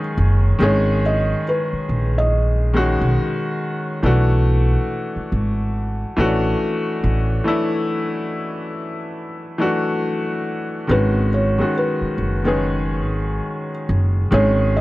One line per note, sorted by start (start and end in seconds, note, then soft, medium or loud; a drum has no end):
0.00 0.45 D#3 medium
0.00 0.46 G#3 medium
0.00 0.46 C#4 medium
0.00 0.47 G#4 medium
0.18 0.53 F#1 medium
0.59 1.32 G#1 loud
0.59 2.11 D#3 medium
0.59 2.12 G#3 medium
0.59 2.12 C#4 medium
0.59 2.13 G#4 loud
0.63 1.01 C#5 medium
1.06 1.44 D#5 medium
1.49 2.13 B4 medium
1.73 muted upright bass stroke soft
1.89 2.97 A#1 medium
2.18 4.01 D#5 medium
2.74 3.89 D#3 medium
2.74 3.89 G#3 medium
2.74 3.90 C#4 medium
2.74 3.90 F#4 loud
3.01 3.15 B1 medium
4.03 4.74 B1 medium
4.03 5.54 E3 medium
4.03 5.55 A3 medium
4.03 5.55 D4 medium
4.03 5.56 F#4 medium
5.16 muted upright bass stroke soft
5.32 6.03 G#1 medium
6.17 6.53 A1 medium
6.17 7.32 E3 loud
6.17 7.32 A3 medium
6.17 6.26 C#4 medium
6.17 7.33 F#4 loud
6.25 7.36 D4 medium
7.04 7.39 A1 medium
7.44 8.96 E3 medium
7.44 8.97 A3 medium
7.44 8.98 D4 medium
7.44 8.98 E4 medium
9.58 10.74 E3 medium
9.58 10.75 A3 medium
9.58 10.75 D4 medium
9.58 10.76 F#4 medium
10.87 11.60 G#1 medium
10.87 11.46 D#3 medium
10.87 11.47 G#3 medium
10.87 11.47 C#4 medium
10.87 11.48 F#4 medium
10.87 11.29 B4 medium
11.34 11.72 C#5 medium
11.58 12.29 D#3 medium
11.58 12.29 G#3 medium
11.58 12.30 C#4 medium
11.58 12.30 F#4 medium
11.77 12.42 B4 medium
12.01 muted upright bass stroke soft
12.18 13.03 F#1 medium
12.44 13.87 D#3 medium
12.44 13.87 G#3 medium
12.44 13.88 C#4 medium
12.44 13.88 G#4 medium
12.44 13.70 B4 medium
13.03 13.39 G#1 medium
13.89 14.25 F#1 medium
14.31 14.81 G#1 loud
14.31 14.81 D#3 medium
14.31 14.81 G#3 medium
14.31 14.81 C#4 medium
14.31 14.81 G#4 medium
14.31 14.76 C#5 medium
14.77 14.81 D#5 medium